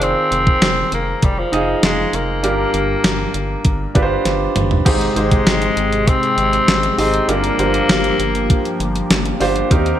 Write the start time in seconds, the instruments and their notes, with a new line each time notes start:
Already playing: analog synth bass F1, grand piano D#3 F4 G#4 C5
0.02 tenor saxophone C4, closed hi-hat
0.32 analog synth bass F1, closed hi-hat
0.47 kick
0.62 analog synth bass F1, snare, closed hi-hat
0.92 analog synth bass F1, tenor saxophone A#3, closed hi-hat
1.22 analog synth bass F1, tenor saxophone G3, kick, closed hi-hat
1.39 tenor saxophone F3
1.52 analog synth bass F1, grand piano D#4 F4 G#4 D#5, closed hi-hat
1.83 analog synth bass F1, tenor saxophone G#3, snare, closed hi-hat
2.13 analog synth bass F1, tenor saxophone A#3, closed hi-hat
2.43 analog synth bass G1, grand piano G2 D4 F4 G4 A#4, closed hi-hat
2.74 analog synth bass G1, closed hi-hat
3.04 analog synth bass G1, snare, closed hi-hat
3.34 analog synth bass G1, closed hi-hat
3.65 analog synth bass G1, kick, closed hi-hat
3.95 analog synth bass G1, grand piano D4 F4 G4 B4, kick, closed hi-hat
4.02 grand piano C5
4.25 analog synth bass G1, snare, closed hi-hat
4.56 analog synth bass G1, closed hi-hat, mid tom
4.71 floor tom
4.85 analog synth bass G#1, grand piano G#2 D#4 G4 G#4 C5, analog synth pad C3 G#3 G5, kick, closed hi-hat, crash
5.01 closed hi-hat
5.16 analog synth bass G#1, tenor saxophone G#3, grand piano D#4 G4 G#4 C5, closed hi-hat
5.31 kick, closed hi-hat
5.47 analog synth bass G#1, snare, closed hi-hat
5.62 closed hi-hat
5.77 analog synth bass G#1, closed hi-hat
5.92 closed hi-hat
6.08 tenor saxophone C4, kick, closed hi-hat
6.23 closed hi-hat
6.37 analog synth bass G#1, closed hi-hat
6.53 closed hi-hat
6.68 analog synth bass G#1, snare, closed hi-hat
6.83 closed hi-hat
6.98 analog synth bass G#1, tenor saxophone C4, grand piano D#4 G4 G#4 D#5, open hi-hat
7.14 closed hi-hat
7.28 analog synth bass G1, grand piano G2 D4 F4 G4 A#4, analog synth pad F3 A#3 G4, tenor saxophone A#3, closed hi-hat
7.44 closed hi-hat
7.58 analog synth bass G1, grand piano D4 F4 G4 C5, closed hi-hat
7.74 closed hi-hat
7.89 analog synth bass G1, snare, closed hi-hat
8.04 closed hi-hat
8.19 analog synth bass G1, closed hi-hat
8.35 closed hi-hat
8.50 kick, closed hi-hat
8.65 closed hi-hat
8.80 analog synth bass G1, closed hi-hat
8.96 closed hi-hat
9.10 analog synth bass G1, snare, closed hi-hat
9.26 closed hi-hat
9.40 analog synth bass G1, grand piano D4 F4 G4 C5, open hi-hat
9.56 closed hi-hat
9.71 analog synth bass D#2, analog synth pad D#3 C4 G4, grand piano D#3 C4 D#4 G4 A#4, kick, closed hi-hat
9.86 closed hi-hat